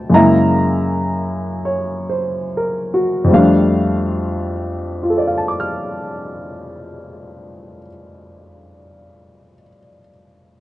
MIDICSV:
0, 0, Header, 1, 2, 480
1, 0, Start_track
1, 0, Key_signature, -1, "major"
1, 0, Tempo, 1515152
1, 516, Tempo, 1662050
1, 996, Time_signature, 4, 2, 24, 8
1, 996, Tempo, 1724138
1, 3031, End_track
2, 0, Start_track
2, 0, Title_t, "Grand piano"
2, 0, Program_c, 0, 0
2, 0, Control_c, 0, 64, 127
2, 0, Note_on_c, 0, 38, 43
2, 0, Note_on_c, 0, 50, 41
2, 0, Note_on_c, 0, 54, 41
2, 0, Note_on_c, 0, 60, 42
2, 0, Note_on_c, 0, 64, 51
2, 0, Note_on_c, 0, 79, 78
2, 0, Note_on_c, 0, 81, 76
2, 30, Note_on_c, 0, 42, 48
2, 33, Note_off_c, 0, 38, 0
2, 34, Note_on_c, 0, 49, 42
2, 35, Note_off_c, 0, 54, 0
2, 36, Note_off_c, 0, 50, 0
2, 36, Note_off_c, 0, 60, 0
2, 36, Note_off_c, 0, 64, 0
2, 39, Control_c, 0, 64, 0
2, 39, Note_on_c, 0, 56, 46
2, 42, Note_off_c, 0, 79, 0
2, 44, Note_on_c, 0, 58, 47
2, 45, Note_on_c, 0, 82, 75
2, 47, Note_on_c, 0, 64, 55
2, 49, Note_on_c, 0, 76, 55
2, 51, Note_off_c, 0, 81, 0
2, 98, Control_c, 0, 64, 127
2, 523, Note_on_c, 0, 73, 41
2, 650, Note_on_c, 0, 72, 40
2, 748, Note_off_c, 0, 73, 0
2, 788, Note_on_c, 0, 70, 40
2, 833, Note_off_c, 0, 82, 0
2, 854, Note_off_c, 0, 72, 0
2, 894, Note_on_c, 0, 66, 45
2, 921, Note_off_c, 0, 70, 0
2, 982, Note_on_c, 0, 41, 54
2, 991, Note_off_c, 0, 76, 0
2, 992, Note_on_c, 0, 53, 50
2, 994, Note_off_c, 0, 42, 0
2, 996, Note_off_c, 0, 49, 0
2, 998, Note_off_c, 0, 56, 0
2, 1000, Note_off_c, 0, 58, 0
2, 1000, Control_c, 0, 64, 0
2, 1001, Note_on_c, 0, 55, 49
2, 1002, Note_off_c, 0, 64, 0
2, 1008, Note_on_c, 0, 57, 52
2, 1009, Note_on_c, 0, 77, 64
2, 1015, Note_on_c, 0, 62, 56
2, 1057, Note_off_c, 0, 66, 0
2, 1057, Control_c, 0, 64, 127
2, 1480, Note_on_c, 0, 65, 36
2, 1500, Note_on_c, 0, 69, 38
2, 1522, Note_on_c, 0, 74, 35
2, 1544, Note_off_c, 0, 77, 0
2, 1548, Note_on_c, 0, 77, 31
2, 1576, Note_on_c, 0, 81, 32
2, 1606, Note_on_c, 0, 86, 28
2, 1638, Note_on_c, 0, 89, 29
2, 2247, Note_off_c, 0, 41, 0
2, 2256, Note_off_c, 0, 53, 0
2, 2265, Note_off_c, 0, 55, 0
2, 2272, Note_off_c, 0, 57, 0
2, 2279, Note_off_c, 0, 62, 0
2, 2733, Note_off_c, 0, 65, 0
2, 2753, Note_off_c, 0, 69, 0
2, 2775, Note_off_c, 0, 74, 0
2, 2801, Note_off_c, 0, 77, 0
2, 2829, Note_off_c, 0, 81, 0
2, 2859, Note_off_c, 0, 86, 0
2, 2892, Note_off_c, 0, 89, 0
2, 3031, End_track
0, 0, End_of_file